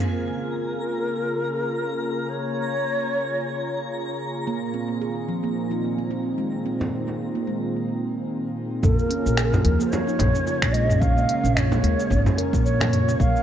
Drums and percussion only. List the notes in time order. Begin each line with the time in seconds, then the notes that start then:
6.81 frame drum
8.83 kick, mid tom, cabasa
8.99 cabasa
9.11 closed hi-hat
9.26 cabasa
9.37 finger snap, cabasa
9.53 mid tom, frame drum, cabasa
9.65 closed hi-hat
9.80 cabasa
9.92 frame drum, cabasa
10.08 cabasa
10.19 kick, closed hi-hat, mid tom, frame drum
10.35 cabasa
10.47 cabasa
10.62 finger snap, kick, cabasa
10.74 closed hi-hat
10.90 mid tom, cabasa
11.02 kick, cabasa
11.18 cabasa
11.29 closed hi-hat
11.45 cabasa
11.57 finger snap, mid tom, cabasa
11.72 frame drum, cabasa
11.84 closed hi-hat
12.00 cabasa
12.11 kick, cabasa
12.26 mid tom, frame drum, cabasa
12.38 closed hi-hat
12.53 kick, cabasa
12.66 cabasa
12.80 finger snap, frame drum, cabasa
12.93 closed hi-hat, mid tom
13.09 cabasa
13.20 kick, cabasa
13.36 cabasa